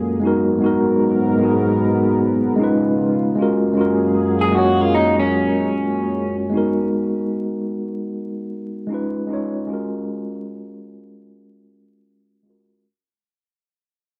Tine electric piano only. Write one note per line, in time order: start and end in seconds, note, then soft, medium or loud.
0.00 0.20 G#3 medium
0.00 0.23 C#4 medium
0.00 0.23 F4 medium
0.00 0.23 F#4 medium
0.00 0.23 A4 medium
0.00 0.23 A#4 loud
0.20 0.50 G#3 medium
0.20 0.51 B3 medium
0.20 0.52 D#4 medium
0.25 0.53 F#4 medium
0.25 0.54 A#4 loud
0.59 1.13 G#3 medium
0.59 1.14 B3 medium
0.59 1.15 D#4 medium
0.64 1.16 F#4 medium
0.64 1.17 A#4 medium
1.38 2.45 G#3 medium
1.38 2.46 B3 medium
1.38 2.47 D#4 medium
1.43 2.48 F#4 medium
1.43 2.48 G#4 loud
2.56 3.25 G#3 medium
2.56 3.26 C#4 medium
2.60 3.27 D#4 medium
2.60 3.28 F4 medium
2.60 3.29 B4 loud
3.35 3.66 G#3 medium
3.35 3.67 C#4 medium
3.35 3.67 F4 medium
3.41 3.68 F#4 medium
3.41 3.69 A#4 medium
3.73 4.29 G#3 medium
3.73 4.29 C#4 medium
3.73 4.30 F4 medium
3.79 4.31 F#4 medium
3.79 4.32 A#4 medium
4.51 5.60 G#3 medium
4.51 5.60 C#4 medium
4.51 5.61 F4 medium
4.57 5.62 F#4 medium
4.57 5.63 C#5 loud
6.50 7.57 G#3 medium
6.50 7.58 B3 medium
6.50 7.59 D#4 medium
6.55 7.60 F#4 medium
6.55 7.61 A#4 medium
8.87 9.22 G#3 medium
8.87 9.23 C#4 medium
8.87 9.24 D#4 medium
8.93 9.25 F4 medium
8.93 9.26 B4 medium
9.27 9.57 G#3 medium
9.27 9.58 C#4 medium
9.27 9.59 D#4 medium
9.32 9.60 F4 medium
9.32 9.61 C#5 medium
9.66 10.74 G#3 medium
9.66 10.74 C#4 medium
9.66 10.75 F4 medium
9.71 10.76 F#4 medium
9.71 10.77 A#4 medium
12.43 12.73 G#3 medium
12.43 12.74 C#4 medium
12.43 12.75 F4 medium
12.48 12.76 F#4 medium
12.48 12.77 A#4 medium